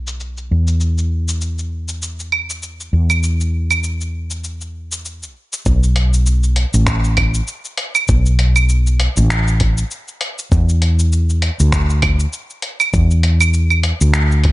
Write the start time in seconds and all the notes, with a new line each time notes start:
Already playing: B1
0.07 cabasa
0.20 cabasa
0.37 cabasa
0.51 E2
0.68 cabasa
0.81 cabasa
0.98 cabasa
1.28 cabasa
1.41 cabasa
1.59 cabasa
1.88 cabasa
2.02 cabasa
2.20 cabasa
2.32 claves
2.50 cabasa
2.63 cabasa
2.80 cabasa
2.93 E2
3.10 cabasa, claves
3.23 cabasa
3.41 cabasa
3.71 cabasa, claves
3.84 cabasa
4.01 cabasa
4.31 cabasa
4.44 cabasa
4.61 cabasa
4.92 cabasa
5.05 cabasa
5.23 cabasa
5.53 cabasa
5.66 B1, kick, cabasa
5.83 cabasa
5.96 closed hi-hat
6.14 cabasa
6.26 cabasa
6.43 cabasa
6.56 closed hi-hat
6.74 A1, cabasa
6.87 finger snap, kick, cabasa
7.04 cabasa
7.17 kick, closed hi-hat, claves
7.34 cabasa
7.48 cabasa
7.65 cabasa
7.78 closed hi-hat
7.95 cabasa, claves
8.08 B1, kick, cabasa
8.26 cabasa
8.39 closed hi-hat
8.56 cabasa, claves
8.69 cabasa
8.87 cabasa
9.00 closed hi-hat
9.17 A1, cabasa
9.30 finger snap, cabasa
9.48 cabasa
9.60 kick, closed hi-hat
9.78 cabasa
9.91 cabasa
10.08 cabasa
10.21 closed hi-hat
10.39 cabasa
10.52 E2, kick, cabasa
10.69 cabasa
10.82 closed hi-hat
10.99 cabasa
11.12 cabasa
11.30 cabasa
11.42 closed hi-hat
11.60 D2, cabasa
11.72 finger snap, kick, cabasa
11.90 cabasa
12.02 kick, closed hi-hat, claves
12.20 cabasa
12.33 cabasa
12.50 cabasa
12.62 closed hi-hat
12.80 cabasa, claves
12.93 E2, kick, cabasa
13.11 cabasa
13.23 closed hi-hat
13.41 cabasa, claves
13.54 cabasa
13.70 cabasa, claves
13.83 closed hi-hat
14.01 D2, cabasa
14.14 finger snap, cabasa
14.32 cabasa
14.44 kick, closed hi-hat